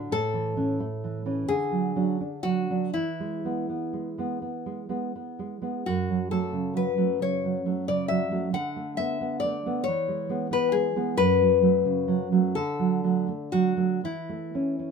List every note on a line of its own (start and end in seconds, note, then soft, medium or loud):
0.00 0.11 D3 soft
0.00 0.11 D4 soft
0.11 1.45 A2 soft
0.11 1.45 A4 medium
0.34 0.56 E3 soft
0.57 0.78 E3 soft
0.57 0.78 C#4 soft
0.80 1.17 A3 soft
1.04 1.24 E3 soft
1.26 1.47 E3 soft
1.26 1.47 C#4 soft
1.48 2.89 D3 soft
1.48 2.39 G#4 medium
1.71 1.95 F#3 soft
1.96 2.17 F#3 soft
1.96 2.18 D4 soft
2.20 2.59 D4 soft
2.43 2.69 F#3 soft
2.43 2.89 F#4 soft
2.70 2.92 F#3 soft
2.70 2.92 D4 soft
2.94 5.82 E3 soft
2.94 4.37 E4 soft
3.20 3.43 G#3 soft
3.45 3.66 G#3 soft
3.45 3.67 B3 soft
3.69 4.08 B3 soft
3.93 4.17 G#3 soft
4.18 4.39 G#3 soft
4.18 4.40 B3 soft
4.42 4.80 B3 soft
4.66 4.88 G#3 soft
4.89 5.11 G#3 soft
4.89 5.11 B3 soft
5.15 5.54 B3 soft
5.39 5.60 G#3 soft
5.62 5.83 G#3 soft
5.62 5.83 B3 soft
5.86 8.50 F#2 soft
5.86 6.28 F#4 soft
6.10 6.30 F#3 soft
6.31 6.51 F#3 soft
6.31 6.52 A3 soft
6.31 6.73 A4 soft
6.53 6.89 C#3 soft
6.75 6.96 F#3 soft
6.75 7.18 B4 soft
6.98 7.18 F#3 soft
6.98 7.18 A3 soft
7.20 7.56 C#3 soft
7.20 7.84 C#5 soft
7.45 7.65 F#3 soft
7.66 7.86 F#3 soft
7.66 7.85 A3 soft
7.88 8.24 C#3 soft
7.88 8.08 D5 soft
8.08 8.30 F#3 soft
8.08 8.50 E5 soft
8.31 8.51 F#3 soft
8.31 8.52 A3 soft
8.53 9.80 D3 soft
8.53 8.95 F#5 medium
8.76 8.96 A3 soft
8.97 9.17 A3 soft
8.97 9.18 B3 soft
8.97 9.38 E5 soft
9.21 9.55 B3 soft
9.40 9.81 D5 soft
9.44 9.65 A3 soft
9.66 9.84 A3 soft
9.66 9.84 B3 soft
9.84 10.46 C#5 medium
9.88 11.15 E3 soft
10.08 10.28 G#3 soft
10.29 10.49 G#3 soft
10.29 10.49 B3 soft
10.51 10.86 B3 soft
10.51 10.73 B4 medium
10.72 10.95 G#3 soft
10.72 11.14 G#4 medium
10.96 11.16 G#3 soft
10.96 11.16 B3 soft
11.17 12.52 F#2 soft
11.17 12.52 B4 medium
11.41 11.61 F#3 soft
11.62 11.83 F#3 soft
11.62 11.84 A3 soft
11.85 12.23 C#3 soft
12.08 12.31 F#3 soft
12.32 12.54 F#3 soft
12.32 12.54 A3 soft
12.55 14.00 D3 soft
12.55 13.49 A4 soft
12.79 13.03 F#3 soft
13.04 13.26 F#3 soft
13.04 13.26 A3 soft
13.28 13.68 A3 soft
13.52 13.75 F#3 soft
13.52 14.00 F#4 medium
13.77 14.00 F#3 soft
13.77 14.01 A3 soft
14.04 14.91 E3 soft
14.04 14.91 E4 soft
14.29 14.53 A3 soft
14.54 14.78 A3 soft
14.54 14.78 C#4 soft
14.79 14.91 C#4 soft